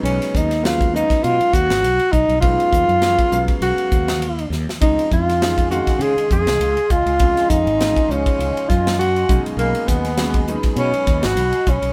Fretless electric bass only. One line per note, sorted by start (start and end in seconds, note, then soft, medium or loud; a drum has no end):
0.03 0.18 B1 medium
0.35 1.02 D#2 medium
1.11 muted fretless electric bass stroke soft
1.24 1.38 B2 medium
1.40 muted fretless electric bass stroke soft
1.53 1.68 D#2 medium
1.69 1.82 G#1 medium
1.83 1.98 B1 medium
2.13 2.27 B1 medium
2.29 2.56 B1 medium
2.72 2.87 D#2 medium
2.88 3.15 F#2 medium
3.32 3.47 B1 medium
3.61 3.76 B1 medium
3.77 muted fretless electric bass stroke soft
3.92 4.45 D#2 medium
4.50 4.65 D#2 medium
4.66 muted fretless electric bass stroke soft
4.81 4.96 C#2 medium
5.11 5.79 F2 medium
5.88 muted fretless electric bass stroke soft
5.99 6.14 C#3 loud
6.16 muted fretless electric bass stroke soft
6.31 6.45 F2 medium
6.46 6.59 C2 medium
6.60 6.75 C#2 medium
6.90 7.05 C#2 medium
7.06 7.33 C#2 medium
7.50 7.65 F2 medium
7.65 7.92 G#1 medium
8.09 8.24 C#2 medium
8.39 8.54 C#2 medium
8.70 9.23 F#2 medium
9.30 9.43 B1 medium
9.43 muted fretless electric bass stroke soft
9.57 9.72 B1 medium
9.88 10.56 D#2 medium
10.64 muted fretless electric bass stroke soft
10.76 10.92 B2 medium
10.92 muted fretless electric bass stroke soft
11.07 11.22 D#2 medium
11.24 11.35 G#1 medium
11.36 11.51 B1 medium
11.67 11.82 B1 medium
11.82 11.93 B1 medium